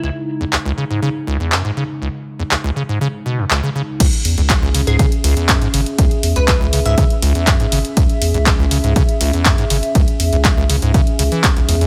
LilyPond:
<<
  \new Staff \with { instrumentName = "Synth pluck" } { \time 4/4 \key cis \minor \tempo 4 = 121 e'16 r2. r8. | r1 | r4. r16 gis'8 r4. r16 | r8. b'16 b'16 r8 e''4 r4 r16 |
r1 | r1 | }
  \new Staff \with { instrumentName = "Analog synth pad" } { \time 4/4 \key cis \minor <cis gis dis'>1~ | <cis gis dis'>1 | <cis' gis' e''>1~ | <cis' gis' e''>1~ |
<cis' gis' e''>1~ | <cis' gis' e''>1 | }
  \new Staff \with { instrumentName = "Acid bass" } { \clef bass \time 4/4 \key cis \minor cis,16 r8 e,16 cis,16 cis,16 cis16 gis,16 cis16 r16 cis,16 e,16 fis,16 gis,16 cis16 r16 | cis,16 r8 e,16 cis,16 cis,16 cis16 gis,16 cis16 r16 b,16 fis,16 cis,16 cis16 cis16 r16 | cis,16 r8 e,16 cis,16 cis,16 cis16 gis,16 cis16 r16 cis,16 e,16 fis,16 gis,16 cis16 r16 | cis,16 r8 e,16 cis,16 cis,16 cis16 gis,16 cis16 r16 cis,16 e,16 fis,16 gis,16 cis16 r16 |
cis,16 r8 e,16 cis,16 cis,16 cis16 gis,16 cis16 r16 cis,16 e,16 fis,16 gis,16 cis16 r16 | cis,16 r8 e,16 cis,16 cis,16 cis16 gis,16 cis16 r16 cis16 e16 cis,16 cis,16 cis,16 e,16 | }
  \new Staff \with { instrumentName = "Analog synth bass" } { \clef bass \time 4/4 \key cis \minor r1 | r1 | cis,16 r16 e,16 cis,4 cis,16 r8 cis,16 r8. gis,,16 r16 | cis,16 r16 e,16 cis,4 cis,16 r8 cis,16 r8. gis,,16 r16 |
cis,16 r16 e,16 cis,4 cis,16 r8 cis,16 r8. gis,,16 r16 | cis,16 r16 e,16 cis,4 cis,16 r8 cis,16 r8 b,,16 e,8 | }
  \new DrumStaff \with { instrumentName = "Drums" } \drummode { \time 4/4 r4 hc4 r4 hc4 | r4 hc4 r4 hc4 | <cymc hh bd cymr>16 hh16 <hho cymr>16 hh16 <hc hh bd cymr>8 <hho cymr>16 hh16 <hh bd cymr>16 hh16 <hho cymr>16 hh16 <hc hh bd cymr>16 hh16 <hho cymr>16 hh16 | <hh bd cymr>16 hh16 <hho cymr>16 hh16 <hc hh bd cymr>8 <hho cymr>16 hh16 <hh bd cymr>16 hh16 <hho cymr>16 hh16 <hc hh bd cymr>16 hh16 <hho cymr>16 hh16 |
<hh bd cymr>16 hh16 <hho cymr>16 hh16 <hc hh bd cymr>8 <hho cymr>16 hh16 <hh bd cymr>16 hh16 <hho cymr>16 hh16 <hc hh bd cymr>16 hh16 <hho cymr>16 hh16 | <hh bd cymr>16 hh16 <hho cymr>16 hh16 <hc hh bd cymr>8 <hho cymr>16 hh16 <hh bd cymr>16 hh16 <hho cymr>16 hh16 <hc hh bd cymr>16 hh16 <hho cymr>16 hh16 | }
>>